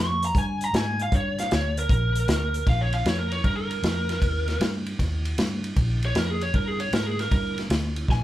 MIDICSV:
0, 0, Header, 1, 4, 480
1, 0, Start_track
1, 0, Tempo, 387097
1, 1390, Time_signature, 4, 2, 24, 8
1, 10211, End_track
2, 0, Start_track
2, 0, Title_t, "Lead electric guitar"
2, 0, Program_c, 0, 29
2, 0, Note_on_c, 0, 85, 112
2, 281, Note_off_c, 0, 85, 0
2, 315, Note_on_c, 0, 82, 101
2, 448, Note_off_c, 0, 82, 0
2, 472, Note_on_c, 0, 80, 83
2, 765, Note_off_c, 0, 80, 0
2, 791, Note_on_c, 0, 82, 94
2, 944, Note_off_c, 0, 82, 0
2, 944, Note_on_c, 0, 80, 95
2, 1240, Note_off_c, 0, 80, 0
2, 1270, Note_on_c, 0, 77, 96
2, 1405, Note_off_c, 0, 77, 0
2, 1421, Note_on_c, 0, 73, 77
2, 1719, Note_off_c, 0, 73, 0
2, 1732, Note_on_c, 0, 77, 86
2, 1875, Note_off_c, 0, 77, 0
2, 1907, Note_on_c, 0, 73, 94
2, 2202, Note_off_c, 0, 73, 0
2, 2222, Note_on_c, 0, 70, 104
2, 3292, Note_off_c, 0, 70, 0
2, 3339, Note_on_c, 0, 77, 78
2, 3480, Note_off_c, 0, 77, 0
2, 3487, Note_on_c, 0, 73, 83
2, 3634, Note_off_c, 0, 73, 0
2, 3643, Note_on_c, 0, 77, 76
2, 3792, Note_off_c, 0, 77, 0
2, 3816, Note_on_c, 0, 73, 80
2, 3954, Note_off_c, 0, 73, 0
2, 3959, Note_on_c, 0, 70, 79
2, 4120, Note_off_c, 0, 70, 0
2, 4120, Note_on_c, 0, 73, 81
2, 4274, Note_off_c, 0, 73, 0
2, 4274, Note_on_c, 0, 70, 71
2, 4412, Note_off_c, 0, 70, 0
2, 4426, Note_on_c, 0, 70, 86
2, 5826, Note_off_c, 0, 70, 0
2, 7508, Note_on_c, 0, 73, 84
2, 7666, Note_off_c, 0, 73, 0
2, 7666, Note_on_c, 0, 70, 76
2, 7818, Note_off_c, 0, 70, 0
2, 7818, Note_on_c, 0, 68, 88
2, 7961, Note_off_c, 0, 68, 0
2, 7967, Note_on_c, 0, 73, 85
2, 8115, Note_off_c, 0, 73, 0
2, 8123, Note_on_c, 0, 70, 78
2, 8280, Note_off_c, 0, 70, 0
2, 8280, Note_on_c, 0, 68, 83
2, 8431, Note_off_c, 0, 68, 0
2, 8433, Note_on_c, 0, 73, 76
2, 8588, Note_off_c, 0, 73, 0
2, 8604, Note_on_c, 0, 70, 79
2, 8762, Note_off_c, 0, 70, 0
2, 8762, Note_on_c, 0, 68, 80
2, 8912, Note_off_c, 0, 68, 0
2, 8936, Note_on_c, 0, 70, 95
2, 9390, Note_off_c, 0, 70, 0
2, 10062, Note_on_c, 0, 80, 91
2, 10211, Note_off_c, 0, 80, 0
2, 10211, End_track
3, 0, Start_track
3, 0, Title_t, "Fingered electric bass"
3, 0, Program_c, 1, 33
3, 0, Note_on_c, 1, 41, 91
3, 376, Note_off_c, 1, 41, 0
3, 431, Note_on_c, 1, 43, 90
3, 856, Note_off_c, 1, 43, 0
3, 908, Note_on_c, 1, 44, 87
3, 1334, Note_off_c, 1, 44, 0
3, 1389, Note_on_c, 1, 43, 99
3, 1814, Note_off_c, 1, 43, 0
3, 1882, Note_on_c, 1, 38, 93
3, 2302, Note_off_c, 1, 38, 0
3, 2353, Note_on_c, 1, 34, 94
3, 2777, Note_off_c, 1, 34, 0
3, 2821, Note_on_c, 1, 38, 94
3, 3250, Note_off_c, 1, 38, 0
3, 3310, Note_on_c, 1, 34, 92
3, 3735, Note_off_c, 1, 34, 0
3, 3779, Note_on_c, 1, 41, 84
3, 4209, Note_off_c, 1, 41, 0
3, 4269, Note_on_c, 1, 43, 91
3, 4695, Note_off_c, 1, 43, 0
3, 4744, Note_on_c, 1, 41, 93
3, 5172, Note_off_c, 1, 41, 0
3, 5229, Note_on_c, 1, 39, 90
3, 5655, Note_off_c, 1, 39, 0
3, 5703, Note_on_c, 1, 43, 87
3, 6132, Note_off_c, 1, 43, 0
3, 6189, Note_on_c, 1, 39, 95
3, 6615, Note_off_c, 1, 39, 0
3, 6672, Note_on_c, 1, 43, 90
3, 7097, Note_off_c, 1, 43, 0
3, 7148, Note_on_c, 1, 34, 93
3, 7575, Note_off_c, 1, 34, 0
3, 7626, Note_on_c, 1, 41, 82
3, 8054, Note_off_c, 1, 41, 0
3, 8110, Note_on_c, 1, 43, 89
3, 8536, Note_off_c, 1, 43, 0
3, 8593, Note_on_c, 1, 44, 94
3, 9018, Note_off_c, 1, 44, 0
3, 9069, Note_on_c, 1, 43, 91
3, 9495, Note_off_c, 1, 43, 0
3, 9543, Note_on_c, 1, 38, 83
3, 9972, Note_off_c, 1, 38, 0
3, 10026, Note_on_c, 1, 34, 93
3, 10211, Note_off_c, 1, 34, 0
3, 10211, End_track
4, 0, Start_track
4, 0, Title_t, "Drums"
4, 278, Note_on_c, 9, 42, 65
4, 402, Note_off_c, 9, 42, 0
4, 432, Note_on_c, 9, 36, 104
4, 435, Note_on_c, 9, 42, 77
4, 556, Note_off_c, 9, 36, 0
4, 559, Note_off_c, 9, 42, 0
4, 753, Note_on_c, 9, 42, 60
4, 877, Note_off_c, 9, 42, 0
4, 916, Note_on_c, 9, 42, 86
4, 927, Note_on_c, 9, 38, 118
4, 1040, Note_off_c, 9, 42, 0
4, 1051, Note_off_c, 9, 38, 0
4, 1232, Note_on_c, 9, 42, 58
4, 1356, Note_off_c, 9, 42, 0
4, 1389, Note_on_c, 9, 42, 83
4, 1390, Note_on_c, 9, 36, 114
4, 1513, Note_off_c, 9, 42, 0
4, 1514, Note_off_c, 9, 36, 0
4, 1717, Note_on_c, 9, 42, 64
4, 1728, Note_on_c, 9, 38, 30
4, 1841, Note_off_c, 9, 42, 0
4, 1852, Note_off_c, 9, 38, 0
4, 1874, Note_on_c, 9, 42, 86
4, 1885, Note_on_c, 9, 38, 125
4, 1998, Note_off_c, 9, 42, 0
4, 2009, Note_off_c, 9, 38, 0
4, 2198, Note_on_c, 9, 42, 64
4, 2322, Note_off_c, 9, 42, 0
4, 2349, Note_on_c, 9, 36, 112
4, 2351, Note_on_c, 9, 42, 84
4, 2473, Note_off_c, 9, 36, 0
4, 2475, Note_off_c, 9, 42, 0
4, 2670, Note_on_c, 9, 42, 68
4, 2794, Note_off_c, 9, 42, 0
4, 2828, Note_on_c, 9, 42, 98
4, 2839, Note_on_c, 9, 38, 107
4, 2952, Note_off_c, 9, 42, 0
4, 2963, Note_off_c, 9, 38, 0
4, 3151, Note_on_c, 9, 42, 58
4, 3275, Note_off_c, 9, 42, 0
4, 3307, Note_on_c, 9, 36, 117
4, 3307, Note_on_c, 9, 51, 81
4, 3318, Note_on_c, 9, 38, 32
4, 3431, Note_off_c, 9, 36, 0
4, 3431, Note_off_c, 9, 51, 0
4, 3442, Note_off_c, 9, 38, 0
4, 3628, Note_on_c, 9, 51, 56
4, 3752, Note_off_c, 9, 51, 0
4, 3789, Note_on_c, 9, 51, 83
4, 3800, Note_on_c, 9, 38, 105
4, 3913, Note_off_c, 9, 51, 0
4, 3924, Note_off_c, 9, 38, 0
4, 4111, Note_on_c, 9, 51, 62
4, 4235, Note_off_c, 9, 51, 0
4, 4267, Note_on_c, 9, 51, 74
4, 4268, Note_on_c, 9, 36, 108
4, 4391, Note_off_c, 9, 51, 0
4, 4392, Note_off_c, 9, 36, 0
4, 4595, Note_on_c, 9, 51, 60
4, 4719, Note_off_c, 9, 51, 0
4, 4755, Note_on_c, 9, 51, 81
4, 4766, Note_on_c, 9, 38, 102
4, 4879, Note_off_c, 9, 51, 0
4, 4890, Note_off_c, 9, 38, 0
4, 5072, Note_on_c, 9, 51, 59
4, 5083, Note_on_c, 9, 38, 31
4, 5196, Note_off_c, 9, 51, 0
4, 5207, Note_off_c, 9, 38, 0
4, 5230, Note_on_c, 9, 36, 108
4, 5233, Note_on_c, 9, 51, 82
4, 5354, Note_off_c, 9, 36, 0
4, 5357, Note_off_c, 9, 51, 0
4, 5551, Note_on_c, 9, 51, 58
4, 5562, Note_on_c, 9, 38, 30
4, 5675, Note_off_c, 9, 51, 0
4, 5686, Note_off_c, 9, 38, 0
4, 5712, Note_on_c, 9, 51, 86
4, 5723, Note_on_c, 9, 38, 106
4, 5836, Note_off_c, 9, 51, 0
4, 5847, Note_off_c, 9, 38, 0
4, 6032, Note_on_c, 9, 51, 60
4, 6156, Note_off_c, 9, 51, 0
4, 6191, Note_on_c, 9, 36, 90
4, 6193, Note_on_c, 9, 51, 78
4, 6204, Note_on_c, 9, 38, 30
4, 6315, Note_off_c, 9, 36, 0
4, 6317, Note_off_c, 9, 51, 0
4, 6328, Note_off_c, 9, 38, 0
4, 6513, Note_on_c, 9, 51, 67
4, 6637, Note_off_c, 9, 51, 0
4, 6670, Note_on_c, 9, 51, 91
4, 6681, Note_on_c, 9, 38, 108
4, 6794, Note_off_c, 9, 51, 0
4, 6805, Note_off_c, 9, 38, 0
4, 6993, Note_on_c, 9, 51, 58
4, 7117, Note_off_c, 9, 51, 0
4, 7148, Note_on_c, 9, 51, 89
4, 7150, Note_on_c, 9, 36, 106
4, 7272, Note_off_c, 9, 51, 0
4, 7274, Note_off_c, 9, 36, 0
4, 7472, Note_on_c, 9, 51, 59
4, 7596, Note_off_c, 9, 51, 0
4, 7627, Note_on_c, 9, 51, 80
4, 7638, Note_on_c, 9, 38, 116
4, 7751, Note_off_c, 9, 51, 0
4, 7762, Note_off_c, 9, 38, 0
4, 7952, Note_on_c, 9, 51, 60
4, 8076, Note_off_c, 9, 51, 0
4, 8107, Note_on_c, 9, 51, 71
4, 8110, Note_on_c, 9, 36, 101
4, 8231, Note_off_c, 9, 51, 0
4, 8234, Note_off_c, 9, 36, 0
4, 8428, Note_on_c, 9, 51, 58
4, 8552, Note_off_c, 9, 51, 0
4, 8589, Note_on_c, 9, 51, 84
4, 8600, Note_on_c, 9, 38, 111
4, 8713, Note_off_c, 9, 51, 0
4, 8724, Note_off_c, 9, 38, 0
4, 8917, Note_on_c, 9, 51, 56
4, 8928, Note_on_c, 9, 38, 30
4, 9041, Note_off_c, 9, 51, 0
4, 9052, Note_off_c, 9, 38, 0
4, 9070, Note_on_c, 9, 36, 116
4, 9071, Note_on_c, 9, 51, 81
4, 9082, Note_on_c, 9, 38, 32
4, 9194, Note_off_c, 9, 36, 0
4, 9195, Note_off_c, 9, 51, 0
4, 9206, Note_off_c, 9, 38, 0
4, 9395, Note_on_c, 9, 51, 59
4, 9406, Note_on_c, 9, 38, 29
4, 9519, Note_off_c, 9, 51, 0
4, 9530, Note_off_c, 9, 38, 0
4, 9550, Note_on_c, 9, 51, 86
4, 9561, Note_on_c, 9, 38, 116
4, 9674, Note_off_c, 9, 51, 0
4, 9685, Note_off_c, 9, 38, 0
4, 9873, Note_on_c, 9, 51, 62
4, 9997, Note_off_c, 9, 51, 0
4, 10025, Note_on_c, 9, 36, 99
4, 10036, Note_on_c, 9, 38, 54
4, 10149, Note_off_c, 9, 36, 0
4, 10160, Note_off_c, 9, 38, 0
4, 10211, End_track
0, 0, End_of_file